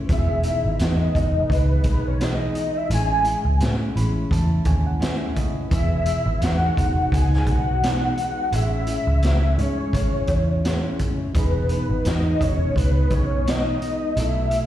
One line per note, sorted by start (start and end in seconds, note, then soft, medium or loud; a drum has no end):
0.07 0.53 E1 medium
0.07 2.16 D#3 medium
0.07 2.15 E3 medium
0.07 0.44 E3 medium
0.07 0.45 G#3 medium
0.07 2.16 B3 medium
0.07 0.45 B3 medium
0.07 kick loud
0.07 closed hi-hat medium
0.11 0.17 F#4 soft
0.11 0.74 E5 loud
0.18 2.21 G#4 medium
0.43 0.80 G#3 soft
0.43 0.80 B3 soft
0.43 0.79 D#4 medium
0.43 closed hi-hat medium
0.64 0.76 G#1 medium
0.74 0.84 E5 medium
0.79 1.08 E2 medium
0.79 1.15 E3 medium
0.79 1.15 G#3 medium
0.79 1.15 B3 medium
0.79 1.13 D#4 medium
0.79 1.51 D#5 medium
0.79 snare medium
0.79 closed hi-hat medium
1.14 1.43 E1 medium
1.14 1.50 G#3 soft
1.14 1.51 B3 soft
1.14 1.50 D#4 medium
1.14 kick medium
1.14 closed hi-hat medium
1.50 1.78 C#2 medium
1.50 1.85 E3 medium
1.50 1.85 G#3 medium
1.50 1.85 B3 medium
1.50 1.83 D#4 medium
1.50 2.09 B4 medium
1.50 kick medium
1.50 closed hi-hat medium
1.84 2.41 B1 medium
1.84 2.21 B3 soft
1.84 2.20 D#4 medium
1.84 kick medium
1.84 closed hi-hat medium
1.88 2.20 G#3 soft
2.08 2.25 C#5 medium
2.19 2.90 E3 soft
2.19 2.55 E3 medium
2.19 2.55 G#3 medium
2.19 2.90 B3 soft
2.19 2.56 B3 medium
2.19 2.90 D#4 soft
2.19 2.54 D#4 medium
2.19 2.91 G#4 soft
2.19 snare loud
2.19 closed hi-hat medium
2.23 2.78 D#5 medium
2.55 2.89 G#3 soft
2.55 2.91 B3 soft
2.55 2.90 D#4 soft
2.55 closed hi-hat medium
2.77 2.91 E5 medium
2.88 3.34 A1 loud
2.88 3.25 A2 medium
2.88 3.25 G#3 medium
2.88 5.67 A3 medium
2.88 3.25 C#4 medium
2.88 5.68 C#4 medium
2.88 5.67 E4 medium
2.88 3.24 E4 medium
2.88 closed hi-hat medium
2.94 5.69 G#3 medium
2.94 3.58 G#5 loud
3.25 3.60 G#3 soft
3.25 3.61 C#4 soft
3.25 3.60 E4 soft
3.25 closed hi-hat medium
3.45 3.57 C#2 medium
3.60 3.95 A2 medium
3.60 3.89 A2 medium
3.60 3.96 G#3 medium
3.60 3.96 C#4 medium
3.60 3.94 E4 medium
3.60 snare medium
3.60 closed hi-hat medium
3.96 4.24 A1 medium
3.96 4.29 G#3 soft
3.96 4.31 C#4 medium
3.96 4.31 E4 medium
3.96 4.29 B5 medium
3.96 closed hi-hat medium
4.29 4.59 E2 medium
4.29 4.65 A2 medium
4.29 4.66 G#3 medium
4.29 4.66 C#4 medium
4.29 4.64 E4 medium
4.29 4.64 A5 medium
4.29 kick medium
4.29 closed hi-hat medium
4.65 5.22 D#2 medium
4.65 4.99 G#3 soft
4.65 4.99 C#4 medium
4.65 5.01 E4 medium
4.65 4.84 G#5 medium
4.65 kick medium
4.65 closed hi-hat medium
4.87 5.01 F#5 medium
4.99 5.35 A2 medium
4.99 5.36 G#3 medium
4.99 5.35 C#4 medium
4.99 5.33 E4 medium
4.99 5.34 E5 medium
4.99 snare medium
4.99 closed hi-hat medium
5.34 5.69 G#3 soft
5.34 5.71 C#4 soft
5.34 5.70 E4 medium
5.34 5.69 D#5 medium
5.34 kick medium
5.34 closed hi-hat medium
5.70 6.15 E1 medium
5.70 8.49 D#3 medium
5.70 6.06 E3 medium
5.70 8.48 E3 medium
5.70 6.06 G#3 medium
5.70 6.05 B3 medium
5.70 8.49 B3 medium
5.70 6.45 E5 loud
5.70 kick loud
5.70 closed hi-hat medium
5.75 8.50 G#4 medium
6.06 6.40 G#3 soft
6.06 6.40 B3 soft
6.06 closed hi-hat medium
6.26 6.38 G#1 medium
6.40 6.69 E2 medium
6.40 6.76 E3 medium
6.40 6.76 G#3 medium
6.40 6.76 B3 medium
6.40 6.74 D#4 medium
6.40 7.16 F#5 medium
6.40 snare medium
6.40 closed hi-hat medium
6.75 7.05 E1 medium
6.75 7.10 G#3 soft
6.75 7.12 B3 soft
6.75 7.11 D#4 medium
6.75 kick medium
6.75 closed hi-hat medium
7.10 7.40 C#2 medium
7.10 7.46 E3 medium
7.10 7.47 G#3 medium
7.10 7.47 B3 medium
7.10 7.45 D#4 medium
7.10 kick medium
7.10 closed hi-hat medium
7.14 7.51 G#5 loud
7.33 snare soft
7.46 8.03 B1 medium
7.46 7.81 G#3 soft
7.46 7.82 B3 soft
7.46 7.82 D#4 soft
7.46 8.56 F#5 loud
7.46 kick medium
7.46 closed hi-hat medium
7.81 8.17 E3 medium
7.81 8.18 G#3 medium
7.81 8.18 B3 medium
7.81 8.15 D#4 medium
7.81 snare loud
7.81 closed hi-hat medium
8.17 8.51 G#3 soft
8.17 8.53 B3 soft
8.17 8.52 D#4 soft
8.17 closed hi-hat medium
8.51 8.96 A1 medium
8.51 8.87 A2 medium
8.51 11.29 E3 medium
8.51 11.30 G#3 medium
8.51 8.88 G#3 medium
8.51 8.87 C#4 medium
8.51 11.31 C#4 medium
8.51 8.85 E4 medium
8.51 9.61 E5 loud
8.51 closed hi-hat medium
8.56 11.32 G#4 medium
8.87 9.23 G#3 soft
8.87 9.23 C#4 soft
8.87 9.22 E4 medium
8.87 closed hi-hat medium
9.07 9.60 C#2 medium
9.22 9.58 A2 medium
9.22 9.59 G#3 medium
9.22 9.58 C#4 medium
9.22 9.56 E4 medium
9.22 snare medium
9.22 closed hi-hat medium
9.57 9.86 G#2 medium
9.57 9.93 G#3 soft
9.57 9.94 C#4 soft
9.57 9.93 E4 soft
9.57 11.00 C#5 medium
9.57 closed hi-hat medium
9.93 10.22 G#1 medium
9.93 10.29 G#3 soft
9.93 10.28 C#4 medium
9.93 10.27 E4 medium
9.93 kick medium
9.93 closed hi-hat medium
10.27 10.85 E2 medium
10.27 10.64 C#4 soft
10.27 10.64 E4 soft
10.27 kick medium
10.27 closed hi-hat medium
10.31 10.64 G#3 soft
10.64 10.99 A2 medium
10.64 11.00 G#3 medium
10.64 10.99 C#4 medium
10.64 10.97 E4 medium
10.64 snare loud
10.64 closed hi-hat medium
10.98 11.33 G#3 soft
10.98 11.35 C#4 soft
10.98 11.34 E4 soft
10.98 kick medium
10.98 closed hi-hat medium
11.33 11.78 E1 medium
11.33 14.12 E3 medium
11.33 11.69 E3 medium
11.33 11.70 G#3 medium
11.33 14.12 B3 medium
11.33 11.69 B3 medium
11.33 14.13 D#4 medium
11.33 11.67 D#4 medium
11.33 kick loud
11.33 closed hi-hat medium
11.37 14.14 G#4 medium
11.37 12.09 B4 medium
11.69 12.04 G#3 soft
11.69 12.05 B3 soft
11.69 12.04 D#4 medium
11.69 closed hi-hat medium
11.89 12.02 G#1 medium
12.04 12.33 E2 loud
12.04 12.40 E3 medium
12.04 12.40 G#3 medium
12.04 12.41 B3 medium
12.04 12.39 D#4 medium
12.04 12.44 D#5 medium
12.04 snare medium
12.04 closed hi-hat medium
12.40 12.69 E1 medium
12.40 12.74 G#3 soft
12.40 12.75 B3 soft
12.40 12.75 D#4 soft
12.40 12.77 C#5 medium
12.40 kick medium
12.40 closed hi-hat medium
12.74 13.04 C#2 medium
12.74 13.10 E3 medium
12.74 13.11 G#3 medium
12.74 13.11 B3 medium
12.74 13.09 D#4 medium
12.74 kick medium
12.74 closed hi-hat medium
12.79 13.15 B4 medium
13.10 13.67 B1 medium
13.10 13.45 G#3 soft
13.10 13.46 B3 soft
13.10 13.46 D#4 medium
13.10 13.50 C#5 medium
13.10 kick medium
13.10 closed hi-hat medium
13.45 13.81 E3 medium
13.45 13.81 G#3 medium
13.45 13.82 B3 medium
13.45 13.80 D#4 medium
13.45 14.20 D#5 medium
13.45 snare loud
13.45 closed hi-hat loud
13.81 14.16 G#3 soft
13.81 14.17 B3 soft
13.81 14.16 D#4 soft
13.81 closed hi-hat medium
14.15 14.60 B1 medium
14.15 14.51 B2 medium
14.15 14.66 F#3 medium
14.15 14.52 F#3 medium
14.15 14.51 A3 medium
14.15 14.66 B3 medium
14.15 14.49 E4 medium
14.15 14.66 E4 medium
14.15 14.66 E5 loud
14.15 closed hi-hat medium
14.20 14.66 A4 medium
14.51 14.66 F#3 soft
14.51 14.66 A3 soft
14.51 14.66 E4 soft
14.51 closed hi-hat medium